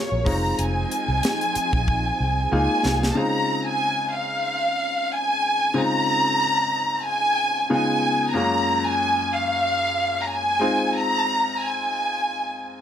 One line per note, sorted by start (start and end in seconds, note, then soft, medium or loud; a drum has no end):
0.00 0.24 F#3 medium
0.00 0.21 G#3 medium
0.00 0.22 A#3 soft
0.00 0.22 C#4 soft
0.00 0.22 F4 medium
0.00 0.23 F4 medium
0.00 0.24 G#4 medium
0.00 0.24 A#4 medium
0.00 0.27 C#5 medium
0.12 0.23 A#1 medium
0.25 2.50 F3 medium
0.25 2.48 G#3 medium
0.25 2.48 C4 medium
0.25 2.50 C4 medium
0.25 2.48 D#4 medium
0.25 2.50 D#4 medium
0.25 2.49 F4 medium
0.25 2.51 G#4 medium
0.25 0.59 A#5 medium
0.25 kick medium
0.25 open hi-hat medium
0.59 0.84 F1 medium
0.59 2.53 G#5 medium
0.59 closed hi-hat medium
0.91 closed hi-hat medium
1.08 1.20 C2 medium
1.23 snare loud
1.23 closed hi-hat medium
1.41 closed hi-hat soft
1.55 muted fingered electric bass stroke soft
1.55 closed hi-hat medium
1.73 2.10 A#1 medium
1.73 kick medium
1.88 kick medium
2.20 2.46 C2 medium
2.51 2.66 C#2 medium
2.51 3.15 G#3 medium
2.51 3.17 A#3 medium
2.51 3.17 C#4 medium
2.51 3.15 D#4 medium
2.51 3.17 D#4 medium
2.51 3.16 F4 medium
2.51 3.17 F4 medium
2.51 2.82 G#5 medium
2.51 3.07 G#5 medium
2.84 3.10 C2 medium
2.84 3.14 F5 medium
2.84 snare medium
3.03 snare medium
3.11 3.17 A5 medium
3.15 5.71 C#3 medium
3.15 5.71 G#3 soft
3.15 5.71 C4 soft
3.15 5.72 D#4 soft
3.15 5.72 F4 medium
3.15 3.67 A#5 medium
3.68 4.11 G#5 loud
4.16 5.12 F5 medium
5.12 5.76 G#5 loud
5.74 7.65 C#3 medium
5.74 7.65 G#3 soft
5.74 7.65 C4 soft
5.74 7.66 D#4 soft
5.74 7.66 F4 medium
5.74 7.06 A#5 loud
7.07 7.67 G#5 loud
7.70 8.35 C#3 medium
7.70 8.33 G#3 medium
7.70 8.35 B3 soft
7.70 8.35 D#4 medium
7.70 8.34 F4 medium
7.70 8.32 G#5 loud
8.34 10.57 F#2 medium
8.34 10.57 G#3 soft
8.34 10.57 A#3 soft
8.34 10.57 C#4 soft
8.34 10.58 F4 medium
8.34 8.85 A#5 medium
8.85 9.32 G#5 loud
9.33 10.23 F5 medium
10.24 10.29 A#5 medium
10.30 10.94 G#5 medium
10.59 12.81 G#3 medium
10.59 12.81 C4 medium
10.59 12.81 D#4 medium
10.59 12.81 F4 medium
10.96 11.59 A#5 loud
11.60 12.81 G#5 medium